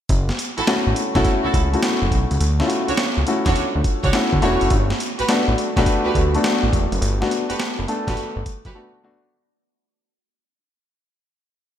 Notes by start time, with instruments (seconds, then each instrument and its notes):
0.09 analog synth bass F#1, kick, closed hi-hat
0.29 snare
0.39 closed hi-hat
0.57 analog synth bass A1, string section E4 F#4 A4, closed hi-hat
0.67 grand piano A3 C#4 E4 F#4, snare, closed hi-hat
0.87 analog synth bass A1
0.96 closed hi-hat
1.15 analog synth bass B1, grand piano A3 C#4 E4 F#4, string section E4 F#4 A4, kick, snare, closed hi-hat
1.25 kick, closed hi-hat
1.44 analog synth bass C#2, string section E4 F#4 A4
1.54 analog synth bass C#2, kick, closed hi-hat
1.73 grand piano A3 C#4 E4 F#4, closed hi-hat
1.83 snare, closed hi-hat
2.02 analog synth bass F#1
2.11 analog synth bass B1, kick, closed hi-hat
2.31 analog synth bass C#2, closed hi-hat
2.41 analog synth bass D2, closed hi-hat
2.60 grand piano A3 C#4 E4 F4, snare
2.67 grand piano F#4, closed hi-hat
2.88 analog synth bass C#2, string section D4 F#4 C#5, closed hi-hat
2.97 snare, closed hi-hat
3.17 analog synth bass C#2
3.27 grand piano A3 C#4 E4 F#4, closed hi-hat
3.46 analog synth bass E2, string section D4 F#4 C#5, kick, snare, closed hi-hat
3.56 closed hi-hat
3.75 analog synth bass D2
3.84 kick, closed hi-hat
4.03 analog synth bass C#2, string section D4 F#4 C#5, kick, closed hi-hat
4.13 grand piano A3 C#4 E4 F#4, snare, closed hi-hat
4.33 analog synth bass D2, kick
4.42 analog synth bass E1, grand piano A3 C#4 E4 F#4, string section D4 F#4 C#5, closed hi-hat
4.61 analog synth bass F#1, closed hi-hat
4.70 analog synth bass G1, kick, closed hi-hat
4.90 snare
5.00 closed hi-hat
5.19 analog synth bass A1, string section F#4 G4 B4, closed hi-hat
5.28 grand piano A3 B3 D4 F#4, snare, closed hi-hat
5.48 analog synth bass A1
5.58 closed hi-hat
5.76 analog synth bass B1, grand piano A3 B3 D4 F#4, string section F#4 G4 B4, kick, snare, closed hi-hat
5.86 kick, closed hi-hat
6.04 analog synth bass D2, string section F#4 G4 B4
6.15 analog synth bass D2, kick, closed hi-hat
6.34 grand piano A3 B3 D4 F#4, closed hi-hat
6.44 snare, closed hi-hat
6.63 analog synth bass A1
6.73 analog synth bass E1, kick, closed hi-hat
6.92 analog synth bass F#1, closed hi-hat
7.02 analog synth bass G1, closed hi-hat
7.21 grand piano A3 B3 D4 F#4, snare
7.31 closed hi-hat
7.50 analog synth bass F#1, string section F#4 G4 B4, closed hi-hat
7.59 snare, closed hi-hat
7.79 analog synth bass F#1
7.88 grand piano A3 B3 D4 A4, closed hi-hat
8.07 analog synth bass A1, string section F#4 G4 B4, kick, snare, closed hi-hat
8.17 closed hi-hat
8.36 analog synth bass G1
8.46 kick, closed hi-hat
8.65 analog synth bass F#1, string section F#4 G4 B4, kick, closed hi-hat
8.75 grand piano A3 B3 D4 F#4
9.03 grand piano A3 B3 D4 F#4